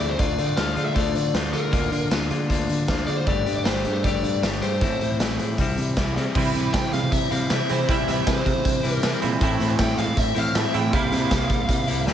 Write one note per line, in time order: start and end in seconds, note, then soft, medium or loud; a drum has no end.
0.00 0.19 D2 medium
0.00 0.17 E3 medium
0.00 0.18 A3 soft
0.00 0.19 C4 medium
0.00 0.18 E4 medium
0.00 closed hi-hat medium
0.09 0.18 C5 medium
0.18 0.38 D2 medium
0.18 0.56 D3 medium
0.18 0.39 A3 medium
0.18 0.39 D4 medium
0.18 0.37 F4 medium
0.18 0.46 D5 medium
0.18 kick loud
0.18 closed hi-hat medium
0.38 0.56 D3 medium
0.38 0.57 A3 medium
0.38 0.59 D4 medium
0.38 0.60 F4 medium
0.38 closed hi-hat soft
0.47 0.56 D5 medium
0.56 0.76 D2 medium
0.56 0.94 D3 medium
0.56 0.78 A3 medium
0.56 0.78 D4 medium
0.56 0.76 F4 medium
0.56 0.85 F5 medium
0.56 snare loud
0.56 closed hi-hat medium
0.56 tambourine medium
0.76 0.95 D3 medium
0.76 0.95 A3 medium
0.76 0.96 D4 medium
0.76 0.97 F4 medium
0.76 closed hi-hat medium
0.85 0.95 E5 medium
0.95 1.14 D2 medium
0.95 1.33 D3 medium
0.95 1.34 A3 medium
0.95 1.36 D4 medium
0.95 1.37 F4 medium
0.95 1.31 D5 medium
0.95 kick medium
0.95 closed hi-hat medium
1.14 1.33 D3 medium
1.14 closed hi-hat soft
1.34 1.52 D2 medium
1.34 1.70 D3 medium
1.34 1.55 A3 medium
1.34 1.55 D4 medium
1.34 1.52 F4 medium
1.34 snare medium
1.34 closed hi-hat medium
1.34 tambourine medium
1.53 1.74 D3 medium
1.53 1.72 A3 medium
1.53 1.73 D4 medium
1.53 1.71 F4 medium
1.53 2.07 A#4 medium
1.53 closed hi-hat medium
1.71 1.91 D2 loud
1.71 2.09 D3 medium
1.71 1.93 A#3 medium
1.71 1.93 D4 medium
1.71 1.91 F4 medium
1.71 kick loud
1.71 closed hi-hat medium
1.92 2.10 D3 medium
1.92 2.10 A#3 soft
1.92 2.12 D4 medium
1.92 2.12 F4 medium
1.92 closed hi-hat medium
2.11 2.30 D2 medium
2.11 2.48 D3 medium
2.11 2.32 A#3 medium
2.11 2.32 D4 medium
2.11 2.29 F4 medium
2.11 snare loud
2.11 closed hi-hat medium
2.11 tambourine loud
2.30 2.49 D3 medium
2.30 2.49 A#3 soft
2.30 2.50 D4 medium
2.30 2.51 F4 medium
2.30 closed hi-hat medium
2.49 2.68 D2 medium
2.49 2.87 D3 medium
2.49 2.88 A#3 medium
2.49 2.89 D4 medium
2.49 2.90 F4 medium
2.49 kick medium
2.49 closed hi-hat medium
2.69 2.88 D3 medium
2.69 closed hi-hat soft
2.88 3.07 D2 medium
2.88 3.26 D3 medium
2.88 3.10 A#3 medium
2.88 3.08 D4 medium
2.88 3.07 F4 medium
2.88 kick medium
2.88 snare medium
2.88 closed hi-hat medium
2.88 tambourine medium
3.07 3.28 D3 medium
3.07 3.27 D4 medium
3.07 3.26 F4 medium
3.07 3.17 D5 medium
3.07 closed hi-hat medium
3.11 3.28 A#3 soft
3.17 3.26 C5 medium
3.27 3.45 G1 medium
3.27 3.64 G3 medium
3.27 3.48 A3 medium
3.27 3.47 D4 medium
3.27 3.45 G4 medium
3.27 3.54 D5 medium
3.27 kick medium
3.27 closed hi-hat medium
3.46 3.65 G2 medium
3.46 3.65 A3 medium
3.46 3.66 D4 medium
3.46 3.67 G4 medium
3.46 closed hi-hat medium
3.56 3.64 D5 medium
3.64 3.84 G1 medium
3.64 4.03 G3 medium
3.64 3.87 A3 medium
3.64 3.86 D4 medium
3.64 3.84 G4 medium
3.64 3.92 C5 medium
3.64 snare loud
3.64 closed hi-hat medium
3.64 tambourine medium
3.85 4.03 G2 medium
3.85 4.04 A3 medium
3.85 4.05 D4 medium
3.85 4.06 G4 medium
3.85 closed hi-hat medium
3.93 4.04 C5 medium
4.04 4.22 G1 medium
4.04 4.41 G3 medium
4.04 4.42 A3 medium
4.04 4.43 D4 medium
4.04 4.44 G4 medium
4.04 4.40 D5 medium
4.04 kick medium
4.04 closed hi-hat medium
4.23 4.42 G2 medium
4.23 closed hi-hat soft
4.42 4.61 G1 medium
4.42 4.80 G3 medium
4.42 4.63 A3 medium
4.42 4.62 D4 medium
4.42 4.60 G4 medium
4.42 snare medium
4.42 closed hi-hat medium
4.42 tambourine medium
4.61 4.83 G2 medium
4.61 4.81 A3 soft
4.61 4.81 D4 medium
4.61 4.80 G4 medium
4.61 5.16 C5 medium
4.61 closed hi-hat medium
4.81 5.00 A1 medium
4.81 5.20 A2 medium
4.81 5.18 E3 medium
4.81 5.02 A3 medium
4.81 5.01 C4 medium
4.81 4.99 E4 medium
4.81 kick loud
4.81 closed hi-hat medium
5.00 5.19 A2 medium
5.00 5.20 A3 medium
5.00 5.20 C4 medium
5.00 5.21 E4 medium
5.00 closed hi-hat medium
5.19 5.38 A1 medium
5.19 5.57 E3 medium
5.19 5.41 A3 medium
5.19 5.40 C4 medium
5.19 5.38 E4 medium
5.19 snare medium
5.19 closed hi-hat medium
5.19 tambourine medium
5.39 5.58 A2 medium
5.39 5.59 A3 medium
5.39 5.58 C4 medium
5.39 5.57 E4 medium
5.39 closed hi-hat medium
5.58 5.77 C2 medium
5.58 6.16 C3 medium
5.58 5.95 E3 medium
5.58 5.97 G3 medium
5.58 5.98 C4 medium
5.58 5.98 E4 medium
5.58 kick medium
5.58 closed hi-hat medium
5.78 5.96 C3 medium
5.78 closed hi-hat medium
5.97 6.15 C2 medium
5.97 6.34 E3 medium
5.97 6.18 G3 medium
5.97 6.17 C4 medium
5.97 6.15 E4 medium
5.97 kick medium
5.97 snare medium
5.97 closed hi-hat medium
5.97 tambourine medium
6.16 6.26 C3 medium
6.16 6.36 G3 soft
6.16 6.35 C4 medium
6.16 6.34 E4 medium
6.16 snare soft
6.35 7.30 C3 medium
6.35 6.54 C3 medium
6.35 7.33 E3 medium
6.35 7.31 G3 medium
6.35 7.32 C4 medium
6.35 7.31 E4 loud
6.35 kick loud
6.35 crash medium
6.54 6.73 C3 medium
6.54 closed hi-hat medium
6.73 6.92 C3 medium
6.73 6.91 G5 loud
6.73 kick medium
6.73 snare loud
6.73 closed hi-hat medium
6.73 tambourine loud
6.93 7.02 C3 medium
6.93 7.12 F5 medium
6.93 snare soft
6.93 closed hi-hat medium
7.02 7.11 C3 medium
7.12 7.30 C3 medium
7.12 7.31 E5 medium
7.12 kick medium
7.12 closed hi-hat medium
7.31 7.50 C3 medium
7.31 7.48 C3 medium
7.31 7.50 E3 medium
7.31 7.50 G3 medium
7.31 7.52 C4 medium
7.31 7.53 E4 medium
7.31 7.49 F5 medium
7.31 closed hi-hat medium
7.50 7.86 C3 medium
7.50 7.60 C3 loud
7.50 7.88 E3 medium
7.50 7.88 G3 medium
7.50 7.90 C4 medium
7.50 7.90 E4 medium
7.50 7.71 E5 medium
7.50 snare loud
7.50 closed hi-hat medium
7.50 tambourine loud
7.69 7.88 C3 medium
7.69 7.87 C3 medium
7.69 7.88 E3 medium
7.69 7.88 G3 medium
7.69 7.90 C4 medium
7.69 7.90 E4 medium
7.69 7.90 C5 medium
7.69 closed hi-hat medium
7.87 8.82 C3 medium
7.87 8.07 C3 loud
7.87 8.83 E3 medium
7.87 8.83 G3 medium
7.87 8.84 C4 medium
7.87 8.82 E4 loud
7.87 8.07 E5 medium
7.87 kick loud
7.87 closed hi-hat medium
8.08 8.26 C3 medium
8.08 8.26 E5 medium
8.08 snare soft
8.08 closed hi-hat medium
8.27 8.45 C3 medium
8.27 8.93 C5 medium
8.27 kick medium
8.27 snare loud
8.27 closed hi-hat medium
8.27 tambourine loud
8.46 8.55 C3 medium
8.46 kick medium
8.46 closed hi-hat medium
8.56 8.65 C3 medium
8.65 8.83 C3 medium
8.65 kick medium
8.65 closed hi-hat medium
8.83 9.02 C3 medium
8.83 9.01 C3 medium
8.83 9.01 E3 medium
8.83 9.03 G3 medium
8.83 9.04 C4 medium
8.83 9.02 E4 medium
8.83 closed hi-hat medium
8.93 9.19 A#4 medium
9.02 9.39 C3 medium
9.02 9.13 C3 medium
9.02 9.40 E3 medium
9.02 9.40 G3 medium
9.02 9.43 C4 medium
9.02 9.41 E4 medium
9.02 snare loud
9.02 closed hi-hat medium
9.02 tambourine loud
9.22 9.40 A#2 medium
9.22 9.41 C3 medium
9.22 9.41 E3 medium
9.22 9.41 G3 medium
9.22 9.43 C4 medium
9.22 9.40 E4 medium
9.22 closed hi-hat medium
9.40 10.34 A2 medium
9.40 9.59 A2 loud
9.40 10.35 E3 medium
9.40 10.36 A3 medium
9.40 10.35 C4 medium
9.40 10.34 E4 loud
9.40 kick loud
9.40 closed hi-hat medium
9.60 9.78 A2 medium
9.60 snare soft
9.60 closed hi-hat medium
9.79 9.97 A2 loud
9.79 9.98 G5 medium
9.79 kick medium
9.79 snare loud
9.79 closed hi-hat medium
9.79 tambourine loud
9.98 10.07 A2 medium
9.98 10.18 F5 loud
9.98 snare soft
9.98 closed hi-hat medium
10.08 10.16 A2 medium
10.17 10.35 A2 medium
10.17 10.38 E5 medium
10.17 kick medium
10.17 closed hi-hat medium
10.35 10.54 A2 medium
10.35 10.53 A2 medium
10.35 10.54 E3 medium
10.35 10.54 A3 medium
10.35 10.56 C4 medium
10.35 10.53 E4 medium
10.35 10.55 F5 medium
10.35 closed hi-hat medium
10.54 10.91 A2 medium
10.54 10.64 A2 medium
10.54 10.91 E3 medium
10.54 10.92 A3 medium
10.54 10.94 C4 medium
10.54 10.93 E4 medium
10.54 10.75 E5 medium
10.54 snare loud
10.54 closed hi-hat medium
10.54 tambourine loud
10.74 10.92 A2 medium
10.74 10.93 A2 medium
10.74 10.92 E3 medium
10.74 10.92 A3 medium
10.74 10.94 C4 medium
10.74 10.92 E4 medium
10.74 10.93 G5 medium
10.74 closed hi-hat medium
10.91 11.11 C2 loud
10.91 11.86 C3 medium
10.91 11.87 G3 medium
10.91 11.87 A#3 loud
10.91 11.86 E4 loud
10.91 12.03 F5 medium
10.91 kick loud
10.91 closed hi-hat medium
11.12 11.30 C3 medium
11.12 snare soft
11.12 closed hi-hat medium
11.31 11.49 C2 medium
11.31 kick medium
11.31 snare loud
11.31 closed hi-hat medium
11.31 tambourine loud
11.50 11.59 C3 medium
11.50 kick medium
11.50 closed hi-hat medium
11.59 11.68 C2 medium
11.69 11.87 C3 loud
11.69 kick medium
11.69 closed hi-hat medium
11.87 12.05 C2 medium
11.87 12.05 C3 medium
11.87 12.06 G3 medium
11.87 12.06 A#3 medium
11.87 12.05 E4 medium
11.87 closed hi-hat medium
12.06 12.13 D2 medium
12.06 12.13 C3 medium
12.06 12.13 G3 medium
12.06 12.13 A#3 medium
12.06 12.13 E4 medium
12.06 snare medium